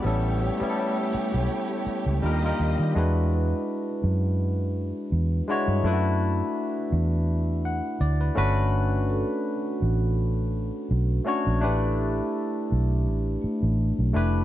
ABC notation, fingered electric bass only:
X:1
M:4/4
L:1/16
Q:"Swing 16ths" 1/4=83
K:Edor
V:1 name="Fingered electric bass" clef=bass
A,,,3 z4 B,,, z3 C,, _E,,2 E,, _E, | E,,4 z2 F,,4- F,, z E,,2 z G,, | F,,4 z2 E,,4- E,, z D,,2 G,,,2- | G,,,4 z2 A,,,4- A,,, z B,,,2 z _B,,, |
A,,,4 z2 B,,,2 A,,,2 z A,,,2 B,,, =F,,,2 |]